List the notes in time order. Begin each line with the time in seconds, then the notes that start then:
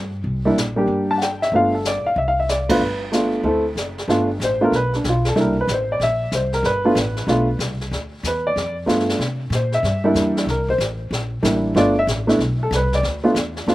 Already playing: G2
0.24 C2, brush sweep
0.45 G3 A#3 D4 E4
0.56 A#1, snare, hi-hat pedal
0.76 G3 A#3 D4 G4
0.88 G1, brush sweep
1.11 A5
1.18 F#5, snare, hi-hat pedal
1.22 G5
1.42 E5, snare
1.52 G1 A3 B3 D4 F4, brush sweep
1.56 F5
1.75 A4
1.85 D5, snare, hi-hat pedal
2.05 F5, muted upright bass stroke
2.16 C2 E5, brush sweep
2.28 F5
2.40 E5
2.49 D5, snare, hi-hat pedal
2.69 A3 B3 D4 F4 B4, kick, ride
2.80 G1, brush sweep
3.12 A3 B3 D4 F4, snare, hi-hat pedal
3.43 D2 A3 C4 E4 A4, brush sweep
3.76 F#1, snare, hi-hat pedal
3.98 snare
4.08 G1 A3 B3 D4 F4, brush sweep, snare
4.40 A1, snare, hi-hat pedal
4.44 C5
4.61 A3 B3 D4 F4 A#4
4.72 B1 B4, brush sweep, snare
4.93 D4, snare
5.04 B1, snare, hi-hat pedal
5.09 F4
5.25 A4, snare
5.35 C2 G3 A#3 D4 E4, brush sweep, snare
5.41 A#4
5.61 B4
5.68 A1, snare, hi-hat pedal
5.73 C5
5.92 D5
6.00 A#1 E5, brush sweep, snare
6.32 C2 C5, snare, hi-hat pedal
6.53 A#4, snare
6.63 G1 B4, brush sweep, snare
6.85 A3 B3 D4 F4
6.95 A1, snare, hi-hat pedal
7.17 snare
7.27 B1 A3 B3 D4 F4, brush sweep, snare
7.59 C2, snare, hi-hat pedal
7.81 snare
7.91 D2, brush sweep, snare
8.23 E2 B4, snare, hi-hat pedal
8.47 D5
8.56 F2, brush sweep, snare
8.86 G2 A3 B3 D4 F4, snare, hi-hat pedal
9.00 snare
9.09 snare
9.19 C3, brush sweep, snare
9.50 A#2, snare, hi-hat pedal
9.55 C5
9.72 E5, snare
9.83 G2, brush sweep, snare
10.04 G3 A#3 D4 E4
10.14 E2, snare, hi-hat pedal
10.37 snare
10.46 C2 A#4, brush sweep, snare
10.69 C5, kick
10.78 A1, snare, hi-hat pedal
11.11 A#1, brush sweep, snare
11.43 A1 G3 A#3 D4 E4, snare, hi-hat pedal
11.75 G1 A3 B3 D4 F4 D5, brush sweep, snare
11.99 E5
12.07 A1, snare, hi-hat pedal
12.27 A3 B3 D4 E4, snare
12.39 B1, brush sweep, snare
12.63 A4
12.71 C2, snare, hi-hat pedal
12.76 B4
12.93 D5, snare
13.03 D2, brush sweep, snare
13.24 A3 B3 D4 F4
13.35 E2, snare, hi-hat pedal
13.57 snare
13.67 F2 A3 B3 D4 F4, brush sweep, snare